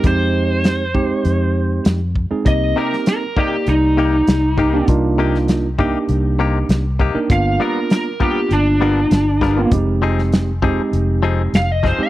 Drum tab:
HH |x---x---x---x---|x---x---x---x---|x---x---x---x---|x---x---x---x---|
SD |----o-------o---|---oo-------o---|---oo-------o---|----o-------o-o-|
BD |o-----o-------o-|o-----o-------o-|o-----o-------o-|o-----o-------o-|

HH |x---x---x---x---|
SD |---oo-------o-o-|
BD |o-----o-------o-|